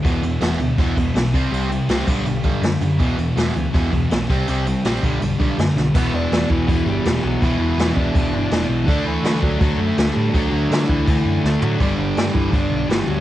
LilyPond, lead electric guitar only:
\new Staff \with { instrumentName = "Lead electric guitar" } { \time 4/4 \key e \minor \tempo 4 = 164 r1 | r1 | r1 | r1 |
<b b'>8 <d' d''>4 <e e'>8 <e e'>8 <g g'>4 <fis fis'>8 | <e e'>8 <e e'>4 <d' d''>2 r8 | <d' d''>8 <e e'>4 <fis fis'>8 <fis fis'>8 <a a'>4 <g g'>8 | <fis fis'>8 <fis fis'>4 <e e'>4. <a a'>8 <fis fis'>8 |
<g g'>8 <d' d''>4 <e e'>8 <d' d''>4 <e e'>8 <fis fis'>8 | }